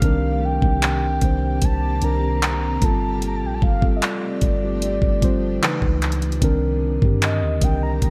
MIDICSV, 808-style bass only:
0, 0, Header, 1, 2, 480
1, 0, Start_track
1, 0, Tempo, 800000
1, 11, Time_signature, 4, 2, 24, 8
1, 4860, End_track
2, 0, Start_track
2, 0, Title_t, "808-style bass"
2, 0, Program_c, 0, 38
2, 12, Note_on_c, 0, 36, 112
2, 357, Note_off_c, 0, 36, 0
2, 374, Note_on_c, 0, 36, 94
2, 719, Note_off_c, 0, 36, 0
2, 732, Note_on_c, 0, 36, 104
2, 962, Note_off_c, 0, 36, 0
2, 973, Note_on_c, 0, 36, 107
2, 1203, Note_off_c, 0, 36, 0
2, 1214, Note_on_c, 0, 36, 107
2, 1673, Note_off_c, 0, 36, 0
2, 1692, Note_on_c, 0, 31, 102
2, 2053, Note_on_c, 0, 34, 92
2, 2062, Note_off_c, 0, 31, 0
2, 2166, Note_off_c, 0, 34, 0
2, 2174, Note_on_c, 0, 31, 108
2, 2403, Note_off_c, 0, 31, 0
2, 2652, Note_on_c, 0, 31, 94
2, 2997, Note_off_c, 0, 31, 0
2, 3011, Note_on_c, 0, 31, 103
2, 3357, Note_off_c, 0, 31, 0
2, 3492, Note_on_c, 0, 37, 97
2, 3837, Note_off_c, 0, 37, 0
2, 3851, Note_on_c, 0, 36, 111
2, 4197, Note_off_c, 0, 36, 0
2, 4212, Note_on_c, 0, 43, 96
2, 4450, Note_on_c, 0, 39, 96
2, 4459, Note_off_c, 0, 43, 0
2, 4565, Note_off_c, 0, 39, 0
2, 4572, Note_on_c, 0, 36, 98
2, 4802, Note_off_c, 0, 36, 0
2, 4812, Note_on_c, 0, 36, 103
2, 4860, Note_off_c, 0, 36, 0
2, 4860, End_track
0, 0, End_of_file